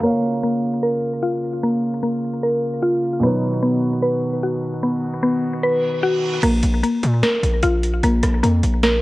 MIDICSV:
0, 0, Header, 1, 7, 480
1, 0, Start_track
1, 0, Tempo, 400000
1, 36, Time_signature, 4, 2, 24, 8
1, 10820, End_track
2, 0, Start_track
2, 0, Title_t, "Grand piano"
2, 0, Program_c, 0, 0
2, 0, Control_c, 0, 64, 127
2, 0, Note_on_c, 0, 58, 69
2, 20, Note_on_c, 0, 70, 70
2, 47, Note_on_c, 0, 73, 67
2, 54, Control_c, 0, 64, 0
2, 73, Note_on_c, 0, 77, 82
2, 232, Control_c, 0, 64, 127
2, 3807, Note_off_c, 0, 58, 0
2, 3820, Note_off_c, 0, 70, 0
2, 3833, Note_off_c, 0, 73, 0
2, 3835, Note_on_c, 0, 47, 78
2, 3847, Note_off_c, 0, 77, 0
2, 3861, Note_on_c, 0, 54, 67
2, 3888, Note_on_c, 0, 63, 69
2, 3894, Control_c, 0, 64, 0
2, 3915, Note_on_c, 0, 71, 78
2, 4112, Control_c, 0, 64, 127
2, 7648, Note_off_c, 0, 47, 0
2, 7661, Note_off_c, 0, 54, 0
2, 7674, Note_off_c, 0, 63, 0
2, 7687, Note_off_c, 0, 71, 0
2, 7733, Control_c, 0, 64, 0
2, 10820, End_track
3, 0, Start_track
3, 0, Title_t, "Synth pluck"
3, 0, Program_c, 1, 84
3, 39, Note_on_c, 1, 58, 89
3, 503, Note_off_c, 1, 58, 0
3, 518, Note_on_c, 1, 58, 76
3, 996, Note_on_c, 1, 70, 80
3, 1473, Note_on_c, 1, 65, 99
3, 1946, Note_off_c, 1, 58, 0
3, 1960, Note_on_c, 1, 58, 88
3, 2420, Note_off_c, 1, 58, 0
3, 2434, Note_on_c, 1, 58, 70
3, 2903, Note_off_c, 1, 70, 0
3, 2918, Note_on_c, 1, 70, 81
3, 3376, Note_off_c, 1, 65, 0
3, 3390, Note_on_c, 1, 65, 97
3, 3873, Note_off_c, 1, 65, 0
3, 3875, Note_off_c, 1, 58, 0
3, 3877, Note_off_c, 1, 70, 0
3, 3877, Note_on_c, 1, 59, 84
3, 4337, Note_off_c, 1, 59, 0
3, 4351, Note_on_c, 1, 59, 77
3, 4830, Note_on_c, 1, 71, 83
3, 5319, Note_on_c, 1, 66, 95
3, 5782, Note_off_c, 1, 59, 0
3, 5796, Note_on_c, 1, 59, 87
3, 6258, Note_off_c, 1, 59, 0
3, 6273, Note_on_c, 1, 59, 75
3, 6745, Note_off_c, 1, 71, 0
3, 6759, Note_on_c, 1, 71, 80
3, 7222, Note_off_c, 1, 66, 0
3, 7237, Note_on_c, 1, 66, 96
3, 7715, Note_off_c, 1, 59, 0
3, 7716, Note_off_c, 1, 66, 0
3, 7717, Note_on_c, 1, 58, 91
3, 7718, Note_off_c, 1, 71, 0
3, 8183, Note_off_c, 1, 58, 0
3, 8197, Note_on_c, 1, 58, 77
3, 8675, Note_on_c, 1, 70, 85
3, 9153, Note_on_c, 1, 65, 101
3, 9626, Note_off_c, 1, 58, 0
3, 9640, Note_on_c, 1, 58, 87
3, 10101, Note_off_c, 1, 58, 0
3, 10115, Note_on_c, 1, 58, 70
3, 10583, Note_off_c, 1, 70, 0
3, 10597, Note_on_c, 1, 70, 81
3, 10820, Note_off_c, 1, 58, 0
3, 10820, Note_off_c, 1, 65, 0
3, 10820, Note_off_c, 1, 70, 0
3, 10820, End_track
4, 0, Start_track
4, 0, Title_t, "Pipe organ"
4, 0, Program_c, 2, 19
4, 37, Note_on_c, 2, 49, 66
4, 37, Note_on_c, 2, 58, 62
4, 37, Note_on_c, 2, 65, 70
4, 3838, Note_off_c, 2, 49, 0
4, 3838, Note_off_c, 2, 58, 0
4, 3838, Note_off_c, 2, 65, 0
4, 3875, Note_on_c, 2, 51, 66
4, 3875, Note_on_c, 2, 59, 63
4, 3875, Note_on_c, 2, 66, 75
4, 7677, Note_off_c, 2, 51, 0
4, 7677, Note_off_c, 2, 59, 0
4, 7677, Note_off_c, 2, 66, 0
4, 10820, End_track
5, 0, Start_track
5, 0, Title_t, "808-style bass"
5, 0, Program_c, 3, 38
5, 7717, Note_on_c, 3, 34, 113
5, 7947, Note_off_c, 3, 34, 0
5, 7957, Note_on_c, 3, 34, 106
5, 8187, Note_off_c, 3, 34, 0
5, 8437, Note_on_c, 3, 46, 103
5, 8667, Note_off_c, 3, 46, 0
5, 8916, Note_on_c, 3, 34, 103
5, 9147, Note_off_c, 3, 34, 0
5, 9157, Note_on_c, 3, 34, 104
5, 9617, Note_off_c, 3, 34, 0
5, 9636, Note_on_c, 3, 34, 114
5, 9866, Note_off_c, 3, 34, 0
5, 9876, Note_on_c, 3, 34, 106
5, 10107, Note_off_c, 3, 34, 0
5, 10116, Note_on_c, 3, 41, 108
5, 10347, Note_off_c, 3, 41, 0
5, 10356, Note_on_c, 3, 34, 105
5, 10817, Note_off_c, 3, 34, 0
5, 10820, End_track
6, 0, Start_track
6, 0, Title_t, "Reverse cymbal"
6, 0, Program_c, 4, 119
6, 6756, Note_on_c, 4, 60, 83
6, 7716, Note_off_c, 4, 60, 0
6, 10820, End_track
7, 0, Start_track
7, 0, Title_t, "Drums"
7, 7717, Note_on_c, 9, 42, 81
7, 7717, Note_on_c, 9, 49, 91
7, 7837, Note_off_c, 9, 42, 0
7, 7837, Note_off_c, 9, 49, 0
7, 7953, Note_on_c, 9, 42, 93
7, 8073, Note_off_c, 9, 42, 0
7, 8202, Note_on_c, 9, 42, 87
7, 8322, Note_off_c, 9, 42, 0
7, 8436, Note_on_c, 9, 42, 72
7, 8556, Note_off_c, 9, 42, 0
7, 8676, Note_on_c, 9, 42, 84
7, 8677, Note_on_c, 9, 38, 123
7, 8796, Note_off_c, 9, 42, 0
7, 8797, Note_off_c, 9, 38, 0
7, 8920, Note_on_c, 9, 42, 76
7, 9040, Note_off_c, 9, 42, 0
7, 9150, Note_on_c, 9, 42, 92
7, 9270, Note_off_c, 9, 42, 0
7, 9397, Note_on_c, 9, 42, 79
7, 9517, Note_off_c, 9, 42, 0
7, 9637, Note_on_c, 9, 42, 78
7, 9757, Note_off_c, 9, 42, 0
7, 9873, Note_on_c, 9, 42, 97
7, 9877, Note_on_c, 9, 37, 68
7, 9993, Note_off_c, 9, 42, 0
7, 9997, Note_off_c, 9, 37, 0
7, 10121, Note_on_c, 9, 42, 88
7, 10241, Note_off_c, 9, 42, 0
7, 10356, Note_on_c, 9, 42, 75
7, 10476, Note_off_c, 9, 42, 0
7, 10595, Note_on_c, 9, 42, 84
7, 10596, Note_on_c, 9, 38, 127
7, 10715, Note_off_c, 9, 42, 0
7, 10716, Note_off_c, 9, 38, 0
7, 10820, End_track
0, 0, End_of_file